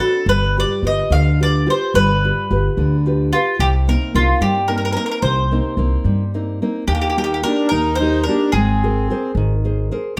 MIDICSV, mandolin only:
0, 0, Header, 1, 2, 480
1, 0, Start_track
1, 0, Key_signature, -3, "minor"
1, 0, Tempo, 551471
1, 232, Time_signature, 6, 3, 24, 8
1, 5993, Key_signature, -3, "major"
1, 8875, End_track
2, 0, Start_track
2, 0, Title_t, "Mandolin"
2, 0, Program_c, 0, 25
2, 0, Note_on_c, 0, 69, 73
2, 240, Note_off_c, 0, 69, 0
2, 252, Note_on_c, 0, 71, 81
2, 482, Note_off_c, 0, 71, 0
2, 520, Note_on_c, 0, 74, 77
2, 726, Note_off_c, 0, 74, 0
2, 755, Note_on_c, 0, 75, 74
2, 977, Note_on_c, 0, 77, 75
2, 984, Note_off_c, 0, 75, 0
2, 1207, Note_off_c, 0, 77, 0
2, 1242, Note_on_c, 0, 74, 76
2, 1472, Note_off_c, 0, 74, 0
2, 1482, Note_on_c, 0, 72, 76
2, 1695, Note_off_c, 0, 72, 0
2, 1699, Note_on_c, 0, 71, 93
2, 2895, Note_on_c, 0, 65, 76
2, 2934, Note_off_c, 0, 71, 0
2, 3132, Note_off_c, 0, 65, 0
2, 3136, Note_on_c, 0, 67, 88
2, 3201, Note_off_c, 0, 67, 0
2, 3385, Note_on_c, 0, 70, 65
2, 3595, Note_off_c, 0, 70, 0
2, 3617, Note_on_c, 0, 65, 80
2, 3827, Note_off_c, 0, 65, 0
2, 3846, Note_on_c, 0, 67, 70
2, 4072, Note_on_c, 0, 70, 61
2, 4073, Note_off_c, 0, 67, 0
2, 4136, Note_off_c, 0, 70, 0
2, 4157, Note_on_c, 0, 70, 51
2, 4210, Note_off_c, 0, 70, 0
2, 4221, Note_on_c, 0, 70, 64
2, 4273, Note_off_c, 0, 70, 0
2, 4287, Note_on_c, 0, 70, 63
2, 4312, Note_off_c, 0, 70, 0
2, 4322, Note_on_c, 0, 70, 69
2, 4384, Note_off_c, 0, 70, 0
2, 4404, Note_on_c, 0, 70, 59
2, 4442, Note_off_c, 0, 70, 0
2, 4452, Note_on_c, 0, 70, 61
2, 4512, Note_off_c, 0, 70, 0
2, 4546, Note_on_c, 0, 72, 78
2, 5486, Note_off_c, 0, 72, 0
2, 5985, Note_on_c, 0, 67, 72
2, 6036, Note_off_c, 0, 67, 0
2, 6046, Note_on_c, 0, 67, 53
2, 6096, Note_off_c, 0, 67, 0
2, 6106, Note_on_c, 0, 67, 58
2, 6167, Note_off_c, 0, 67, 0
2, 6177, Note_on_c, 0, 67, 52
2, 6240, Note_off_c, 0, 67, 0
2, 6251, Note_on_c, 0, 67, 61
2, 6290, Note_off_c, 0, 67, 0
2, 6300, Note_on_c, 0, 67, 57
2, 6369, Note_off_c, 0, 67, 0
2, 6389, Note_on_c, 0, 67, 49
2, 6446, Note_off_c, 0, 67, 0
2, 6472, Note_on_c, 0, 70, 83
2, 6682, Note_off_c, 0, 70, 0
2, 6692, Note_on_c, 0, 70, 75
2, 6920, Note_off_c, 0, 70, 0
2, 6923, Note_on_c, 0, 72, 78
2, 7163, Note_off_c, 0, 72, 0
2, 7168, Note_on_c, 0, 70, 72
2, 7402, Note_off_c, 0, 70, 0
2, 7418, Note_on_c, 0, 68, 76
2, 8107, Note_off_c, 0, 68, 0
2, 8875, End_track
0, 0, End_of_file